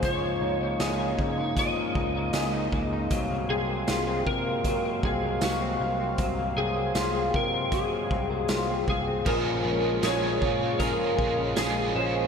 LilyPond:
<<
  \new Staff \with { instrumentName = "Electric slide guitar" } { \time 4/4 \key bes \minor \tempo 4 = 78 des''2 ees''4. r8 | r8 aes'4 bes'4 aes'8 ges'8. r16 | r8 aes'4 bes'8 aes'4. aes'8 | bes'4 des''4 bes'4 aes'8 c''8 | }
  \new Staff \with { instrumentName = "Overdriven electric guitar" } { \time 4/4 \key bes \minor r1 | r1 | r1 | <bes, f aes des' aes'>8 <aes des' aes'>8 <bes, f aes des' aes'>8 <aes des' aes'>8 <f aes des' aes'>8 <aes des' aes'>8 <bes, f aes des' aes'>8 <aes des' aes'>8 | }
  \new Staff \with { instrumentName = "Clean electric guitar" } { \time 4/4 \key bes \minor f16 bes16 ees'16 bes16 aes'16 ees'16 bes16 ees'16 f16 bes16 ees'16 bes16 aes'16 ees'16 bes16 ees'16 | ges16 bes16 c'16 bes16 f'16 c'16 bes16 c'16 ges16 bes16 c'16 bes8 c'16 bes16 c'16 | ges16 bes16 c'16 bes16 f'16 c'16 bes16 c'16 ges16 bes16 c'16 bes16 f'16 c'16 bes16 c'16 | <f aes'>8 des'8 aes'8 des'8 aes'8 des'8 aes'8 des'8 | }
  \new Staff \with { instrumentName = "French horn section" } { \clef bass \time 4/4 \key bes \minor << { <des f ees'>1 | <c ges f''>1~ | <c ges f''>1 | <des f f'>1 | } \\ { <aes bes>1~ | <aes bes>1~ | <aes bes>1 | <aes bes>1 | } >> }
  \new Staff \with { instrumentName = "Picked electric bass" } { \clef bass \time 4/4 \key bes \minor des,8 des,8 des,8 des8. r16 des,8 des,8 des,8 | c,8 c,8 c,8 c8. r16 c,8 c,8 c,8 | c,8 c,8 c,8 c8. r16 c,8 c,8 c,8 | bes,,8 bes,,8 bes,,8 bes,8. r16 bes,,8 bes,,8 bes,,8 | }
  \new DrumStaff \with { instrumentName = "Drums" } \drummode { \time 4/4 <hh bd>4 <hh sn tamb>8 bd8 <hh bd>8 bd8 <hh sn tamb>8 bd8 | <hh bd>4 <hh sn tamb>8 bd8 <hh bd>8 bd8 <hh sn tamb>4 | <hh bd>4 <hh sn tamb>8 bd8 <hh bd>8 bd8 <hh sn tamb>8 bd8 | <cymc bd>4 <hh sn tamb>8 bd8 <hh bd>8 bd8 <hh sn tamb>4 | }
>>